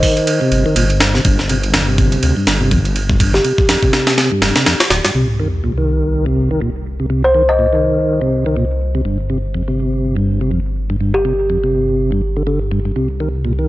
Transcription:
0.00 0.40 D#3 medium
0.00 0.36 D#5 medium
0.00 kick medium
0.00 open hi-hat medium
0.17 ride soft
0.27 ride medium
0.41 0.64 C3 loud
0.52 0.65 G1 medium
0.52 ride medium
0.66 0.74 G1 soft
0.66 0.75 D#3 medium
0.76 1.20 G1 medium
0.76 0.85 A#2 loud
0.76 ride medium
0.90 ride soft
1.00 snare loud
1.00 ride medium
1.14 1.21 C3 medium
1.14 snare soft
1.25 2.17 G1 loud
1.25 1.38 G2 medium
1.25 kick loud
1.25 ride medium
1.39 snare soft
1.49 1.58 C3 medium
1.49 ride medium
1.63 ride soft
1.74 1.82 F2 medium
1.74 snare loud
1.74 ride medium
1.88 2.35 C3 medium
1.98 kick medium
1.98 ride medium
2.12 ride soft
2.23 2.32 D2 medium
2.23 ride medium
2.37 2.59 G2 loud
2.47 3.39 G1 medium
2.47 snare loud
2.47 ride medium
2.61 2.70 C3 medium
2.71 2.80 F2 loud
2.71 kick medium
2.71 ride medium
2.85 ride soft
2.96 ride medium
3.10 3.16 G2 medium
3.10 kick loud
3.20 3.33 G2 medium
3.20 kick loud
3.20 ride medium
3.34 3.56 G4 medium
3.34 snare soft
3.45 3.53 C3 medium
3.45 ride medium
3.58 kick loud
3.69 3.77 F2 medium
3.69 snare loud
3.69 ride medium
3.83 4.30 C3 medium
3.83 kick loud
3.93 snare loud
3.93 ride medium
4.07 snare loud
4.07 ride medium
4.18 snare loud
4.18 ride medium
4.32 4.55 G2 loud
4.42 4.51 F1 medium
4.42 snare loud
4.42 ride medium
4.56 4.66 C3 medium
4.56 snare loud
4.56 ride medium
4.66 4.75 F2 loud
4.66 snare loud
4.66 ride medium
4.80 snare loud
4.80 ride medium
4.90 5.00 D1 loud
4.90 snare loud
4.90 ride medium
5.05 5.11 G2 medium
5.05 snare loud
5.05 ride medium
5.15 9.03 C2 medium
5.15 5.28 C3 medium
5.15 sub drop medium
5.40 5.48 D#3 medium
5.64 5.72 A#2 medium
5.78 6.25 D#3 medium
6.26 6.49 C3 medium
6.51 6.60 D#3 medium
6.61 6.70 A#2 medium
7.00 7.06 C3 medium
7.10 7.23 C3 medium
7.24 7.46 C5 medium
7.34 7.43 D#3 medium
7.49 8.16 D#5 medium
7.59 7.67 A#2 medium
7.73 8.20 D#3 medium
8.21 8.45 C3 loud
8.46 8.56 D#3 medium
8.56 8.65 A#2 loud
8.95 9.01 C3 medium
9.05 12.94 G1 medium
9.05 9.18 G2 medium
9.30 9.38 C3 medium
9.54 9.63 F2 medium
9.68 10.15 C3 medium
10.16 10.40 G2 loud
10.41 10.51 C3 medium
10.51 10.60 F2 medium
10.90 10.96 G2 medium
11.00 11.13 G2 medium
11.14 11.36 G4 medium
11.25 11.33 C3 medium
11.50 11.58 F2 medium
11.64 12.11 C3 medium
12.12 12.22 G2 loud
12.36 12.43 D3 medium
12.47 12.59 D3 medium
12.71 12.80 G2 loud
12.85 12.92 G2 medium
12.96 13.68 C2 medium
12.96 13.08 C3 medium
13.20 13.29 D#3 medium
13.45 13.53 A#2 medium
13.59 13.68 D#3 medium

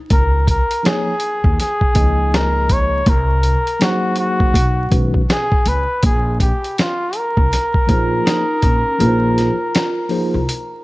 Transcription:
0.10 0.57 C#2 medium
0.10 0.46 A#4 loud
0.10 kick loud
0.10 closed hi-hat medium
0.47 0.88 A#4 medium
0.47 kick medium
0.47 closed hi-hat medium
0.71 closed hi-hat medium
0.83 1.12 F3 medium
0.83 1.13 A#3 medium
0.83 1.13 D#4 medium
0.83 1.13 G#4 medium
0.83 1.60 G#4 loud
0.83 1.13 C#5 medium
0.83 snare loud
0.83 closed hi-hat medium
1.20 closed hi-hat medium
1.44 1.55 D#2 medium
1.44 kick medium
1.60 2.36 G#4 loud
1.60 snare soft
1.60 closed hi-hat medium
1.81 kick medium
1.94 3.03 C#2 medium
1.94 3.00 F3 medium
1.94 3.00 A#3 medium
1.94 3.01 D#4 medium
1.94 3.01 G#4 medium
1.94 3.01 D#5 medium
1.94 kick medium
1.94 closed hi-hat medium
2.34 2.74 A#4 medium
2.34 snare medium
2.34 closed hi-hat medium
2.69 3.11 C#5 loud
2.69 kick medium
2.69 closed hi-hat medium
3.06 3.53 C2 loud
3.06 3.84 A#4 loud
3.06 kick loud
3.06 closed hi-hat medium
3.43 closed hi-hat medium
3.67 closed hi-hat medium
3.79 4.54 F#3 medium
3.79 4.55 A#3 medium
3.79 4.55 D#4 medium
3.79 4.18 F#4 loud
3.79 4.55 G#4 medium
3.79 4.55 C5 medium
3.79 snare loud
3.79 closed hi-hat medium
4.16 closed hi-hat medium
4.20 5.01 F#4 loud
4.40 4.51 D#2 medium
4.40 kick medium
4.54 4.83 B1 medium
4.54 kick medium
4.54 closed hi-hat medium
4.90 5.21 B1 medium
4.90 5.19 D#3 medium
4.90 5.20 G#3 medium
4.90 5.20 C#4 medium
4.90 5.20 F#4 medium
4.90 5.20 B4 medium
4.90 kick medium
4.90 closed hi-hat medium
5.14 kick medium
5.30 5.70 G#4 loud
5.30 snare medium
5.30 closed hi-hat medium
5.52 kick medium
5.66 5.84 C#2 medium
5.66 6.04 B4 medium
5.66 closed hi-hat medium
6.03 6.50 A#1 loud
6.03 6.39 G#4 medium
6.03 kick loud
6.03 closed hi-hat medium
6.40 6.81 G4 medium
6.40 kick medium
6.40 closed hi-hat medium
6.64 closed hi-hat medium
6.78 7.18 F4 medium
6.78 snare loud
6.78 closed hi-hat medium
7.13 10.84 A#4 loud
7.13 closed hi-hat medium
7.37 7.48 C2 medium
7.37 kick medium
7.53 snare soft
7.53 closed hi-hat medium
7.74 kick medium
7.87 8.18 A#1 medium
7.87 8.43 F3 medium
7.87 8.43 A#3 medium
7.87 8.44 D#4 medium
7.87 8.27 F4 medium
7.87 8.44 G#4 medium
7.87 8.44 C5 medium
7.87 kick medium
7.87 closed hi-hat medium
8.26 8.64 D#4 medium
8.26 snare loud
8.26 closed hi-hat medium
8.62 8.81 A#1 medium
8.62 9.01 C#4 medium
8.62 kick medium
8.62 closed hi-hat medium
8.99 9.47 A#1 loud
8.99 9.54 F3 medium
8.99 9.55 A#3 medium
8.99 9.55 D#4 medium
8.99 10.44 F4 medium
8.99 9.55 G#4 medium
8.99 9.08 B4 medium
8.99 closed hi-hat medium
9.07 9.58 C5 medium
9.38 snare soft
9.38 closed hi-hat medium
9.75 snare loud
9.75 closed hi-hat medium
10.09 10.38 F3 medium
10.09 10.38 A#3 medium
10.09 10.39 D#4 medium
10.09 10.39 G#4 medium
10.09 10.39 C5 medium
10.09 open hi-hat soft
10.34 10.45 C2 medium
10.49 closed hi-hat medium

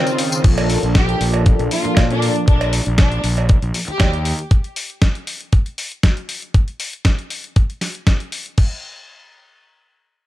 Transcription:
0.00 0.41 C#3 medium
0.00 0.41 D#3 medium
0.00 0.39 C4 loud
0.00 0.41 C4 medium
0.00 0.42 F4 medium
0.00 0.40 C5 medium
0.00 0.40 F5 medium
0.00 0.42 D#6 medium
0.07 closed hi-hat soft
0.07 tambourine soft
0.18 open hi-hat loud
0.32 closed hi-hat soft
0.32 tambourine medium
0.43 0.75 A#1 medium
0.43 1.17 F3 medium
0.43 1.17 A#3 medium
0.43 1.18 D4 medium
0.43 1.18 A4 medium
0.43 kick loud
0.43 closed hi-hat medium
0.43 crash medium
0.58 closed hi-hat soft
0.58 cowbell loud
0.70 open hi-hat loud
0.83 1.14 A#1 medium
0.83 closed hi-hat soft
0.95 1.17 G4 medium
0.95 kick loud
0.95 snare loud
0.95 closed hi-hat medium
1.09 closed hi-hat soft
1.20 1.52 A#1 medium
1.20 1.69 F3 medium
1.20 1.69 A#3 medium
1.20 1.69 D4 medium
1.20 1.69 A4 medium
1.20 open hi-hat loud
1.34 closed hi-hat soft
1.34 cowbell medium
1.46 kick loud
1.46 closed hi-hat medium
1.59 1.67 A#1 medium
1.59 closed hi-hat soft
1.70 2.44 F3 medium
1.70 2.45 A#3 medium
1.70 2.45 D4 medium
1.70 1.93 F4 medium
1.70 2.45 A4 medium
1.70 open hi-hat loud
1.85 muted fingered electric bass stroke soft
1.85 closed hi-hat soft
1.97 2.28 A#2 medium
1.97 kick loud
1.97 snare loud
1.97 closed hi-hat medium
1.97 cowbell loud
2.10 2.31 D4 medium
2.10 closed hi-hat soft
2.22 open hi-hat loud
2.36 closed hi-hat soft
2.48 2.79 A#1 medium
2.48 2.69 D4 medium
2.48 kick loud
2.48 closed hi-hat medium
2.61 closed hi-hat soft
2.61 cowbell medium
2.73 open hi-hat loud
2.86 3.17 A#1 medium
2.86 closed hi-hat soft
2.98 3.20 D4 medium
2.98 kick loud
2.98 snare loud
2.98 closed hi-hat medium
3.12 closed hi-hat soft
3.24 3.55 A#1 medium
3.24 open hi-hat loud
3.38 cowbell medium
3.49 kick loud
3.49 closed hi-hat medium
3.62 3.70 A#1 medium
3.62 closed hi-hat soft
3.74 open hi-hat loud
3.88 4.26 G4 medium
3.88 muted fingered electric bass stroke soft
3.88 closed hi-hat soft
4.00 4.31 D#2 medium
4.00 kick loud
4.00 snare loud
4.00 closed hi-hat medium
4.00 cowbell medium
4.13 closed hi-hat soft
4.25 open hi-hat loud
4.39 closed hi-hat soft
4.51 kick loud
4.51 closed hi-hat medium
4.64 closed hi-hat soft
4.76 open hi-hat loud
4.90 closed hi-hat soft
5.02 kick loud
5.02 snare loud
5.02 closed hi-hat medium
5.15 closed hi-hat soft
5.27 open hi-hat loud
5.41 closed hi-hat soft
5.53 kick loud
5.53 closed hi-hat medium
5.66 closed hi-hat soft
5.78 open hi-hat loud
5.92 closed hi-hat soft
6.03 kick loud
6.03 snare loud
6.03 closed hi-hat medium
6.17 closed hi-hat soft
6.29 open hi-hat loud
6.42 closed hi-hat soft
6.54 kick loud
6.54 closed hi-hat medium
6.68 closed hi-hat soft
6.80 open hi-hat loud
6.93 closed hi-hat soft
7.05 kick loud
7.05 snare loud
7.05 closed hi-hat medium
7.19 closed hi-hat soft
7.30 open hi-hat loud
7.44 closed hi-hat soft
7.56 kick loud
7.56 closed hi-hat medium
7.70 closed hi-hat soft
7.81 snare medium
7.81 open hi-hat loud
7.95 closed hi-hat soft
8.07 kick loud
8.07 snare loud
8.07 closed hi-hat medium
8.20 closed hi-hat soft
8.32 open hi-hat loud
8.46 closed hi-hat soft
8.58 kick loud
8.58 crash medium

